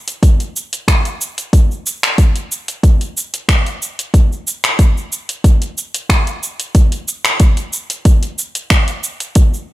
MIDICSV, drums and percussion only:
0, 0, Header, 1, 2, 480
1, 0, Start_track
1, 0, Tempo, 652174
1, 1126, Time_signature, 4, 2, 24, 8
1, 7161, End_track
2, 0, Start_track
2, 0, Title_t, "Drums"
2, 56, Note_on_c, 9, 42, 43
2, 62, Note_on_c, 9, 69, 35
2, 130, Note_off_c, 9, 42, 0
2, 136, Note_off_c, 9, 69, 0
2, 167, Note_on_c, 9, 36, 111
2, 168, Note_on_c, 9, 42, 57
2, 175, Note_on_c, 9, 69, 44
2, 240, Note_off_c, 9, 36, 0
2, 242, Note_off_c, 9, 42, 0
2, 248, Note_off_c, 9, 69, 0
2, 295, Note_on_c, 9, 42, 27
2, 302, Note_on_c, 9, 69, 21
2, 369, Note_off_c, 9, 42, 0
2, 375, Note_off_c, 9, 69, 0
2, 415, Note_on_c, 9, 69, 78
2, 488, Note_off_c, 9, 69, 0
2, 536, Note_on_c, 9, 42, 46
2, 542, Note_on_c, 9, 69, 35
2, 610, Note_off_c, 9, 42, 0
2, 616, Note_off_c, 9, 69, 0
2, 646, Note_on_c, 9, 36, 101
2, 649, Note_on_c, 9, 26, 76
2, 649, Note_on_c, 9, 42, 59
2, 655, Note_on_c, 9, 69, 48
2, 720, Note_off_c, 9, 36, 0
2, 723, Note_off_c, 9, 26, 0
2, 723, Note_off_c, 9, 42, 0
2, 729, Note_off_c, 9, 69, 0
2, 775, Note_on_c, 9, 42, 30
2, 782, Note_on_c, 9, 69, 23
2, 849, Note_off_c, 9, 42, 0
2, 855, Note_off_c, 9, 69, 0
2, 893, Note_on_c, 9, 69, 85
2, 966, Note_off_c, 9, 69, 0
2, 1015, Note_on_c, 9, 42, 46
2, 1022, Note_on_c, 9, 69, 35
2, 1089, Note_off_c, 9, 42, 0
2, 1095, Note_off_c, 9, 69, 0
2, 1126, Note_on_c, 9, 36, 106
2, 1128, Note_on_c, 9, 42, 56
2, 1134, Note_on_c, 9, 69, 46
2, 1200, Note_off_c, 9, 36, 0
2, 1201, Note_off_c, 9, 42, 0
2, 1208, Note_off_c, 9, 69, 0
2, 1262, Note_on_c, 9, 69, 22
2, 1335, Note_off_c, 9, 69, 0
2, 1372, Note_on_c, 9, 69, 82
2, 1446, Note_off_c, 9, 69, 0
2, 1496, Note_on_c, 9, 26, 79
2, 1496, Note_on_c, 9, 42, 45
2, 1503, Note_on_c, 9, 69, 34
2, 1570, Note_off_c, 9, 26, 0
2, 1570, Note_off_c, 9, 42, 0
2, 1577, Note_off_c, 9, 69, 0
2, 1606, Note_on_c, 9, 36, 105
2, 1606, Note_on_c, 9, 42, 56
2, 1612, Note_on_c, 9, 69, 44
2, 1679, Note_off_c, 9, 42, 0
2, 1680, Note_off_c, 9, 36, 0
2, 1686, Note_off_c, 9, 69, 0
2, 1734, Note_on_c, 9, 42, 30
2, 1740, Note_on_c, 9, 69, 21
2, 1807, Note_off_c, 9, 42, 0
2, 1814, Note_off_c, 9, 69, 0
2, 1853, Note_on_c, 9, 69, 77
2, 1926, Note_off_c, 9, 69, 0
2, 1974, Note_on_c, 9, 42, 45
2, 1981, Note_on_c, 9, 69, 32
2, 2048, Note_off_c, 9, 42, 0
2, 2054, Note_off_c, 9, 69, 0
2, 2086, Note_on_c, 9, 36, 108
2, 2087, Note_on_c, 9, 42, 58
2, 2093, Note_on_c, 9, 69, 43
2, 2159, Note_off_c, 9, 36, 0
2, 2160, Note_off_c, 9, 42, 0
2, 2167, Note_off_c, 9, 69, 0
2, 2216, Note_on_c, 9, 42, 28
2, 2222, Note_on_c, 9, 69, 22
2, 2289, Note_off_c, 9, 42, 0
2, 2296, Note_off_c, 9, 69, 0
2, 2334, Note_on_c, 9, 69, 75
2, 2408, Note_off_c, 9, 69, 0
2, 2456, Note_on_c, 9, 42, 47
2, 2463, Note_on_c, 9, 69, 34
2, 2530, Note_off_c, 9, 42, 0
2, 2536, Note_off_c, 9, 69, 0
2, 2566, Note_on_c, 9, 36, 108
2, 2567, Note_on_c, 9, 26, 78
2, 2567, Note_on_c, 9, 42, 58
2, 2574, Note_on_c, 9, 69, 45
2, 2639, Note_off_c, 9, 36, 0
2, 2641, Note_off_c, 9, 26, 0
2, 2641, Note_off_c, 9, 42, 0
2, 2647, Note_off_c, 9, 69, 0
2, 2697, Note_on_c, 9, 42, 31
2, 2704, Note_on_c, 9, 69, 21
2, 2771, Note_off_c, 9, 42, 0
2, 2777, Note_off_c, 9, 69, 0
2, 2814, Note_on_c, 9, 69, 79
2, 2888, Note_off_c, 9, 69, 0
2, 2937, Note_on_c, 9, 42, 48
2, 2944, Note_on_c, 9, 69, 32
2, 3011, Note_off_c, 9, 42, 0
2, 3017, Note_off_c, 9, 69, 0
2, 3046, Note_on_c, 9, 36, 97
2, 3047, Note_on_c, 9, 42, 60
2, 3053, Note_on_c, 9, 69, 43
2, 3119, Note_off_c, 9, 36, 0
2, 3121, Note_off_c, 9, 42, 0
2, 3127, Note_off_c, 9, 69, 0
2, 3183, Note_on_c, 9, 69, 21
2, 3257, Note_off_c, 9, 69, 0
2, 3293, Note_on_c, 9, 69, 85
2, 3366, Note_off_c, 9, 69, 0
2, 3414, Note_on_c, 9, 26, 80
2, 3414, Note_on_c, 9, 42, 51
2, 3421, Note_on_c, 9, 69, 36
2, 3488, Note_off_c, 9, 26, 0
2, 3488, Note_off_c, 9, 42, 0
2, 3494, Note_off_c, 9, 69, 0
2, 3525, Note_on_c, 9, 42, 58
2, 3526, Note_on_c, 9, 36, 102
2, 3532, Note_on_c, 9, 69, 44
2, 3599, Note_off_c, 9, 36, 0
2, 3599, Note_off_c, 9, 42, 0
2, 3605, Note_off_c, 9, 69, 0
2, 3661, Note_on_c, 9, 69, 22
2, 3735, Note_off_c, 9, 69, 0
2, 3771, Note_on_c, 9, 69, 77
2, 3845, Note_off_c, 9, 69, 0
2, 3894, Note_on_c, 9, 42, 47
2, 3900, Note_on_c, 9, 69, 31
2, 3968, Note_off_c, 9, 42, 0
2, 3974, Note_off_c, 9, 69, 0
2, 4006, Note_on_c, 9, 36, 104
2, 4006, Note_on_c, 9, 42, 61
2, 4013, Note_on_c, 9, 69, 45
2, 4079, Note_off_c, 9, 36, 0
2, 4080, Note_off_c, 9, 42, 0
2, 4086, Note_off_c, 9, 69, 0
2, 4134, Note_on_c, 9, 42, 31
2, 4141, Note_on_c, 9, 69, 22
2, 4208, Note_off_c, 9, 42, 0
2, 4214, Note_off_c, 9, 69, 0
2, 4253, Note_on_c, 9, 69, 75
2, 4327, Note_off_c, 9, 69, 0
2, 4375, Note_on_c, 9, 42, 53
2, 4382, Note_on_c, 9, 69, 33
2, 4449, Note_off_c, 9, 42, 0
2, 4455, Note_off_c, 9, 69, 0
2, 4486, Note_on_c, 9, 36, 109
2, 4488, Note_on_c, 9, 26, 80
2, 4488, Note_on_c, 9, 42, 63
2, 4495, Note_on_c, 9, 69, 44
2, 4560, Note_off_c, 9, 36, 0
2, 4562, Note_off_c, 9, 26, 0
2, 4562, Note_off_c, 9, 42, 0
2, 4568, Note_off_c, 9, 69, 0
2, 4616, Note_on_c, 9, 42, 32
2, 4622, Note_on_c, 9, 69, 21
2, 4689, Note_off_c, 9, 42, 0
2, 4696, Note_off_c, 9, 69, 0
2, 4734, Note_on_c, 9, 69, 79
2, 4807, Note_off_c, 9, 69, 0
2, 4854, Note_on_c, 9, 42, 48
2, 4861, Note_on_c, 9, 69, 34
2, 4928, Note_off_c, 9, 42, 0
2, 4934, Note_off_c, 9, 69, 0
2, 4966, Note_on_c, 9, 36, 106
2, 4966, Note_on_c, 9, 42, 62
2, 4972, Note_on_c, 9, 69, 47
2, 5040, Note_off_c, 9, 36, 0
2, 5040, Note_off_c, 9, 42, 0
2, 5046, Note_off_c, 9, 69, 0
2, 5094, Note_on_c, 9, 42, 34
2, 5100, Note_on_c, 9, 69, 22
2, 5167, Note_off_c, 9, 42, 0
2, 5174, Note_off_c, 9, 69, 0
2, 5211, Note_on_c, 9, 69, 84
2, 5285, Note_off_c, 9, 69, 0
2, 5333, Note_on_c, 9, 26, 86
2, 5333, Note_on_c, 9, 42, 50
2, 5340, Note_on_c, 9, 69, 35
2, 5407, Note_off_c, 9, 26, 0
2, 5407, Note_off_c, 9, 42, 0
2, 5413, Note_off_c, 9, 69, 0
2, 5444, Note_on_c, 9, 42, 62
2, 5446, Note_on_c, 9, 36, 110
2, 5450, Note_on_c, 9, 69, 44
2, 5517, Note_off_c, 9, 42, 0
2, 5520, Note_off_c, 9, 36, 0
2, 5524, Note_off_c, 9, 69, 0
2, 5572, Note_on_c, 9, 42, 35
2, 5579, Note_on_c, 9, 69, 20
2, 5646, Note_off_c, 9, 42, 0
2, 5652, Note_off_c, 9, 69, 0
2, 5689, Note_on_c, 9, 69, 79
2, 5763, Note_off_c, 9, 69, 0
2, 5814, Note_on_c, 9, 42, 51
2, 5820, Note_on_c, 9, 69, 32
2, 5888, Note_off_c, 9, 42, 0
2, 5894, Note_off_c, 9, 69, 0
2, 5926, Note_on_c, 9, 42, 62
2, 5927, Note_on_c, 9, 36, 112
2, 5933, Note_on_c, 9, 69, 47
2, 6000, Note_off_c, 9, 36, 0
2, 6000, Note_off_c, 9, 42, 0
2, 6006, Note_off_c, 9, 69, 0
2, 6054, Note_on_c, 9, 42, 32
2, 6061, Note_on_c, 9, 69, 20
2, 6128, Note_off_c, 9, 42, 0
2, 6134, Note_off_c, 9, 69, 0
2, 6171, Note_on_c, 9, 69, 74
2, 6245, Note_off_c, 9, 69, 0
2, 6294, Note_on_c, 9, 42, 52
2, 6300, Note_on_c, 9, 69, 37
2, 6367, Note_off_c, 9, 42, 0
2, 6374, Note_off_c, 9, 69, 0
2, 6405, Note_on_c, 9, 26, 80
2, 6405, Note_on_c, 9, 42, 61
2, 6407, Note_on_c, 9, 36, 108
2, 6411, Note_on_c, 9, 69, 46
2, 6478, Note_off_c, 9, 26, 0
2, 6478, Note_off_c, 9, 42, 0
2, 6480, Note_off_c, 9, 36, 0
2, 6485, Note_off_c, 9, 69, 0
2, 6534, Note_on_c, 9, 42, 33
2, 6540, Note_on_c, 9, 69, 22
2, 6608, Note_off_c, 9, 42, 0
2, 6614, Note_off_c, 9, 69, 0
2, 6650, Note_on_c, 9, 69, 79
2, 6724, Note_off_c, 9, 69, 0
2, 6774, Note_on_c, 9, 42, 50
2, 6780, Note_on_c, 9, 69, 35
2, 6847, Note_off_c, 9, 42, 0
2, 6854, Note_off_c, 9, 69, 0
2, 6884, Note_on_c, 9, 42, 60
2, 6887, Note_on_c, 9, 36, 102
2, 6890, Note_on_c, 9, 69, 60
2, 6957, Note_off_c, 9, 42, 0
2, 6960, Note_off_c, 9, 36, 0
2, 6964, Note_off_c, 9, 69, 0
2, 7020, Note_on_c, 9, 69, 32
2, 7094, Note_off_c, 9, 69, 0
2, 7161, End_track
0, 0, End_of_file